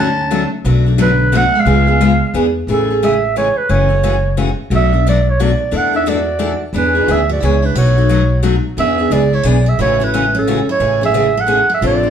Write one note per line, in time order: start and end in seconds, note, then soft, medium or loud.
0.00 0.44 D2 medium
0.00 0.49 C#4 medium
0.00 0.49 A5 loud
0.31 0.42 D3 medium
0.31 0.42 F#3 medium
0.31 0.42 A3 medium
0.31 0.42 C#4 medium
0.31 0.42 F#4 medium
0.64 1.46 B1 medium
0.64 0.85 B2 medium
0.64 0.85 F#3 medium
0.64 0.85 A3 medium
0.64 0.85 D4 medium
0.64 0.85 F#4 medium
0.86 0.97 A3 soft
0.86 0.97 D4 soft
0.86 0.98 F#4 soft
0.98 1.10 B2 medium
0.98 1.30 D3 medium
0.98 1.09 F#3 loud
0.98 1.10 A3 medium
0.98 1.10 D4 medium
0.98 1.10 F#4 medium
0.98 1.39 B4 loud
1.32 1.43 B2 medium
1.32 1.43 F#3 medium
1.32 1.44 A3 medium
1.32 1.55 A3 medium
1.32 1.44 D4 loud
1.32 1.44 F#4 loud
1.37 1.61 F#5 loud
1.55 2.35 G#3 medium
1.59 2.37 F5 loud
1.65 2.20 C#2 medium
1.65 1.86 C#3 medium
1.65 1.86 G#3 medium
1.65 1.86 B3 medium
1.65 1.86 F4 medium
1.65 1.86 G#4 medium
1.87 2.00 B3 soft
1.87 2.00 F4 soft
1.87 2.00 G#4 medium
2.01 2.11 C#3 medium
2.01 2.12 G#3 loud
2.01 2.12 B3 medium
2.01 2.12 F4 medium
2.01 2.12 G#4 medium
2.34 2.61 E2 medium
2.34 2.45 E3 medium
2.34 2.45 B3 medium
2.34 2.45 D4 medium
2.34 2.46 G#4 medium
2.67 3.49 A1 medium
2.67 2.88 C#3 medium
2.67 2.88 E3 medium
2.67 2.88 A3 medium
2.67 2.89 C#4 medium
2.67 2.89 G#4 medium
2.73 3.06 A4 medium
2.90 3.02 A3 soft
2.90 3.02 C#4 soft
2.90 3.02 G#4 soft
3.03 3.13 C#3 medium
3.03 3.14 E3 medium
3.03 3.14 A3 medium
3.03 3.14 C#4 medium
3.03 3.14 G#4 medium
3.03 3.37 E5 loud
3.36 3.47 C#3 medium
3.36 3.47 E3 medium
3.36 3.47 A3 medium
3.36 3.47 C#4 medium
3.36 3.47 G#4 medium
3.36 3.59 C#5 medium
3.57 3.72 B4 medium
3.69 4.51 F#1 medium
3.69 3.89 C#3 medium
3.69 3.89 E3 medium
3.69 3.89 A3 medium
3.69 3.89 C#4 medium
3.69 3.87 F#4 medium
3.69 4.38 C#5 medium
3.89 4.03 A3 soft
3.89 4.03 C#4 medium
3.89 4.02 F#4 soft
4.03 4.15 C#3 medium
4.03 4.15 E3 medium
4.03 4.15 A3 medium
4.03 4.15 C#4 medium
4.03 4.15 F#4 medium
4.37 4.48 C#3 medium
4.37 4.48 E3 medium
4.37 4.48 A3 medium
4.37 4.48 C#4 medium
4.37 4.49 F#4 medium
4.70 5.52 B1 medium
4.70 4.91 B2 medium
4.70 4.91 F#3 medium
4.70 4.91 A3 medium
4.70 4.91 D4 medium
4.70 4.92 F#4 medium
4.75 5.05 E5 loud
4.93 5.05 A3 soft
4.93 5.05 D4 soft
4.93 5.05 F#4 medium
5.06 5.17 B2 medium
5.06 5.17 F#3 medium
5.06 5.17 A3 medium
5.06 5.17 D4 medium
5.06 5.18 F#4 loud
5.06 5.31 D5 loud
5.30 5.41 C#5 medium
5.40 5.50 B2 medium
5.40 5.51 F#3 medium
5.40 5.51 A3 medium
5.40 5.51 D4 medium
5.40 5.51 F#4 loud
5.40 5.78 D5 medium
5.71 6.54 E2 medium
5.71 5.92 E3 medium
5.71 5.92 A3 medium
5.71 5.92 D4 medium
5.71 5.93 E4 medium
5.71 5.92 A4 medium
5.76 5.95 F#5 loud
5.93 6.06 D4 soft
5.93 6.05 E4 soft
5.93 6.06 A4 medium
5.93 6.11 E5 medium
6.06 6.18 E3 medium
6.06 6.18 A3 medium
6.06 6.18 D4 medium
6.06 6.18 E4 medium
6.06 6.62 F#4 medium
6.06 6.18 A4 medium
6.06 6.63 D5 medium
6.39 6.51 E3 medium
6.39 6.51 A3 medium
6.39 6.51 D4 medium
6.39 6.51 E4 medium
6.39 6.51 A4 medium
6.73 7.00 E2 medium
6.73 6.94 E3 medium
6.73 6.94 B3 medium
6.73 6.94 D4 medium
6.73 7.09 D4 medium
6.73 6.94 G#4 medium
6.77 7.13 B4 medium
6.95 7.07 B3 soft
6.95 7.07 D4 soft
6.95 7.08 G#4 medium
7.08 7.37 D2 medium
7.08 7.19 E3 medium
7.08 7.19 B3 medium
7.08 7.20 D4 medium
7.08 7.20 G#4 medium
7.08 7.29 G#4 medium
7.08 7.31 E5 medium
7.29 7.40 F#4 medium
7.29 7.46 D5 medium
7.40 7.71 C#2 medium
7.40 7.54 E3 medium
7.40 7.54 B3 medium
7.40 7.54 D4 medium
7.40 7.62 E4 medium
7.40 7.54 G#4 medium
7.45 7.67 C#5 medium
7.62 7.75 D4 medium
7.62 7.79 B4 medium
7.75 8.57 B1 medium
7.75 7.96 B2 medium
7.75 7.96 F#3 medium
7.75 7.96 A3 medium
7.75 7.97 D#4 medium
7.75 8.43 F#4 medium
7.75 7.96 F#4 medium
7.75 8.45 C#5 medium
7.98 8.08 A3 soft
7.98 8.10 D#4 soft
7.98 8.09 F#4 medium
8.09 8.21 B2 medium
8.09 8.21 F#3 medium
8.09 8.21 A3 medium
8.09 8.21 D#4 medium
8.09 8.21 F#4 medium
8.43 8.54 B2 medium
8.43 8.54 F#3 medium
8.43 8.55 A3 medium
8.43 8.55 D#4 medium
8.43 8.55 F#4 loud
8.77 9.04 E2 medium
8.77 8.98 E3 medium
8.77 8.98 B3 medium
8.77 8.98 D4 medium
8.77 9.09 G#4 medium
8.77 8.97 G#4 medium
8.77 9.14 E5 loud
8.98 9.10 B3 soft
8.98 9.10 D4 medium
8.98 9.11 G#4 medium
9.10 9.39 C#2 medium
9.10 9.22 E3 medium
9.10 9.23 B3 medium
9.10 9.23 D4 medium
9.10 9.23 G#4 medium
9.10 9.33 G#4 medium
9.10 9.36 D5 loud
9.33 9.43 E4 medium
9.33 9.49 C#5 medium
9.43 9.73 B1 medium
9.43 9.56 E3 medium
9.43 9.56 B3 medium
9.43 9.56 D4 medium
9.43 9.65 G#4 medium
9.43 9.57 G#4 medium
9.43 9.70 D5 medium
9.66 9.78 G#4 medium
9.66 9.80 E5 medium
9.78 10.60 A1 medium
9.78 9.99 C#3 medium
9.78 10.00 E3 medium
9.78 9.99 A3 medium
9.78 9.99 C#4 medium
9.78 9.98 E4 medium
9.78 9.99 F#4 medium
9.78 10.05 C#5 loud
10.00 10.13 A3 soft
10.00 10.13 C#4 soft
10.00 10.35 E4 medium
10.00 10.12 F#4 medium
10.00 10.36 B4 medium
10.14 10.24 C#3 medium
10.14 10.25 E3 medium
10.14 10.25 A3 medium
10.14 10.25 C#4 medium
10.14 10.25 F#4 medium
10.35 10.66 C#4 medium
10.35 10.68 A4 medium
10.47 10.58 C#3 medium
10.47 10.59 E3 medium
10.47 10.58 A3 medium
10.47 10.59 C#4 medium
10.47 10.59 F#4 medium
10.69 11.00 E4 medium
10.69 11.01 C#5 medium
10.80 11.61 A1 medium
10.80 11.00 C#3 medium
10.80 11.00 E3 medium
10.80 11.00 A3 medium
10.80 11.00 C#4 medium
10.80 11.00 G#4 medium
11.01 11.14 A3 soft
11.01 11.13 C#4 soft
11.01 11.14 G#4 medium
11.01 11.34 G#4 medium
11.05 11.42 E5 loud
11.14 11.25 C#3 medium
11.14 11.25 E3 medium
11.14 11.26 A3 medium
11.14 11.25 C#4 medium
11.14 11.26 G#4 medium
11.37 11.69 A4 medium
11.37 11.72 F#5 loud
11.47 11.59 C#3 medium
11.47 11.59 E3 medium
11.47 11.59 A3 medium
11.47 11.59 C#4 medium
11.47 11.59 G#4 medium
11.70 11.82 G#4 medium
11.74 11.84 E5 medium
11.81 12.09 A1 medium
11.81 12.02 C3 medium
11.81 12.03 F3 medium
11.81 12.03 C4 medium
11.81 12.02 D4 medium
11.81 12.10 F4 medium
11.81 12.02 A4 medium
11.86 12.10 D5 loud
12.03 12.10 C4 soft
12.03 12.10 D4 medium
12.03 12.10 A4 medium